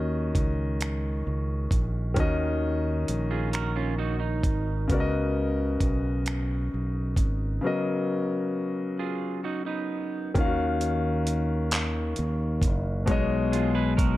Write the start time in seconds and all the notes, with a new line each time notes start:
Already playing: D#2 D#3 C#4 F#4 D#5
0.35 C#2, kick, closed hi-hat
0.81 finger snap, closed hi-hat
1.27 C#2
1.71 A#1, kick, closed hi-hat
2.14 D#2 D#3 C#4, kick, closed hi-hat
2.18 F#4 D#5
3.08 A#1, closed hi-hat
3.31 F4 G#4
3.53 F#4 A#4, finger snap, closed hi-hat
3.76 C#4 F4
3.98 D#4 F#4
4.20 D#4
4.43 G#1, kick, closed hi-hat
4.88 C#2 C#3 B3 F#4, kick, closed hi-hat
4.92 A#4 D5
5.00 D#5
5.80 B1, kick, closed hi-hat
6.26 finger snap, closed hi-hat
6.74 B1
7.16 G#1, kick, closed hi-hat
7.61 C#3 F#3 B3
7.65 A#4 D#5
8.99 F4 G#4
9.44 D#4 F#4
9.66 B3 D#4
10.34 D#2 D#3 C#4, kick, closed hi-hat
10.39 F4 F5
10.45 F#4
10.81 closed hi-hat
11.27 closed hi-hat
11.71 clap, closed hi-hat
12.16 D#2, closed hi-hat
12.62 F#1, kick, closed hi-hat
13.06 B1 B2 G#3 C#5, kick, closed hi-hat
13.11 D#5
13.52 F4 G#4, closed hi-hat
13.75 G#4 B4
13.97 F#4 A#4, kick, closed hi-hat